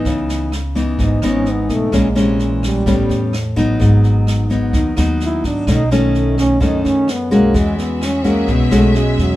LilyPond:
<<
  \new Staff \with { instrumentName = "String section" } { \time 4/4 \key cis \minor \tempo 4 = 128 r1 | r1 | r1 | r1 |
<cis' fis' gis' e''>1 | }
  \new Staff \with { instrumentName = "Trombone" } { \time 4/4 \key cis \minor r2 dis'8 cis'8 b8 a8 | gis8 bis,8 e8 g4. r4 | r2. e'8 d'8 | dis'8 fis8 a8 cis'8 dis'8 cis'8 b8 ais8 |
gis8 b8 cis'8 ais8 b8 a8 gis8 fis8 | }
  \new Staff \with { instrumentName = "Nylon-string guitar" } { \time 4/4 \key cis \minor << { <e b dis'>4 r8 <e b dis'>4 <e b dis'>4. | <e gis cis'>8 <e gis cis'>4. <g b cis'>4 r8 <fis b dis'>8~ | <fis b dis'>4. <fis b dis'>4 <fis b dis'>4. | <dis a cis'>8 <dis a cis'>4. <dis a cis'>4 r8 <gis cis' fis'>8~ |
<gis cis' fis'>4. <gis cis' fis'>4 <gis cis' fis'>4. | } \\ { cis2 gis,2 | ais,2 a,2 | gis,2 dis2 | b,2 fis,2 |
e2 b,2 | } >> }
  \new Staff \with { instrumentName = "Upright bass" } { \clef bass \time 4/4 \key cis \minor cis,2 gis,,8 gis,,4 b,,8 | ais,,2 a,,8 e,4 a,,8 | gis,,2 dis,8 dis,4 gis,,8 | b,,2 fis,8 fis,4 b,,8 |
e,2 b,,8 b,,4 e,8 | }
  \new DrumStaff \with { instrumentName = "Drums" } \drummode { \time 4/4 <bd sn>8 sn8 <ss sn>8 <bd sn>8 <bd sn>8 <ss sn>8 sn8 <bd sn>8 | <bd ss sn>8 sn8 sn8 <bd ss sn>8 <bd sn>8 sn8 <ss sn>8 <bd sn>8 | <bd sn>8 sn8 <ss sn>8 <bd sn>8 <bd sn>8 <ss sn>8 sn8 <bd sn>8 | <bd ss sn>8 sn8 sn8 <bd ss sn>8 <bd sn>8 sn8 <ss sn>8 <bd sn>8 |
<bd sn>8 sn8 <ss sn>8 <bd sn>8 <bd sn>8 <ss sn>8 sn8 <bd sn>8 | }
>>